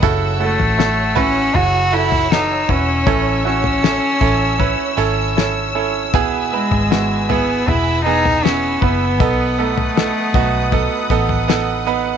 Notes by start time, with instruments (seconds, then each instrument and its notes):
Already playing: string section F#5
0.02 fingered electric bass F#1, grand piano C#3 E4 F#4 A4, string section C#5 E6, kick, floor tom
0.40 cello A3, grand piano E4 F#4 A4
0.59 fingered electric bass A1, floor tom
0.78 grand piano E4 F#4 A4, snare
1.15 cello C#4, grand piano E4 F#4 B4, floor tom
1.54 fingered electric bass F#1, grand piano E4 F#4 G#4, cello F#4, floor tom
1.92 grand piano E4 F#4 A4, cello E4
2.12 floor tom
2.31 grand piano E3 F#4 A4, cello D#4, snare
2.68 fingered electric bass E1, cello C#4, grand piano E4 F#4 B4, kick
3.06 fingered electric bass A1, grand piano A2 E3 C#4 E4 A4, kick, floor tom
3.44 grand piano C#4 E4 F#4, cello C#4
3.64 floor tom
3.82 grand piano C#4 E4 A4, snare
4.21 fingered electric bass A1, grand piano C#4 E4 A4, kick, floor tom
4.59 grand piano C#4 E4 B4, kick, floor tom
4.97 fingered electric bass G#1, grand piano C#4 E4 A4
5.36 grand piano C#4 E4 A4, snare
5.75 grand piano C#4 E4 A4
6.14 fingered electric bass E1, grand piano B2 B3 E4 G#4, string section B4 G#5, kick, floor tom
6.53 cello G#3, grand piano B3 E4 B4
6.71 fingered electric bass G#1, floor tom
6.90 grand piano B3 E4 F#4, snare
7.29 grand piano B3 E4 G#4, cello B3, floor tom
7.67 fingered electric bass E1, grand piano B3 E4 G#4, cello E4, floor tom
8.05 grand piano E3 B3 G#4, cello D#4
8.25 floor tom
8.43 grand piano B3 E4 G#4, cello C#4, snare
8.81 fingered electric bass F#1, grand piano B3 E4 B4, cello B3, kick
9.20 fingered electric bass B1, grand piano B3 D#4 A4, string section F#5 D#6, kick, floor tom
9.58 cello A3, grand piano B3 D#4 A4
9.78 floor tom
9.96 grand piano B3 D#4 A4, snare
10.34 fingered electric bass B1, grand piano B3 D#4 F#4, kick, floor tom
10.72 grand piano B3 D#4 A4, kick, floor tom
11.10 fingered electric bass A1, grand piano B3 D#4 A4, kick
11.29 floor tom
11.48 grand piano B3 D#4 A4, snare
11.87 grand piano B3 D#4 B4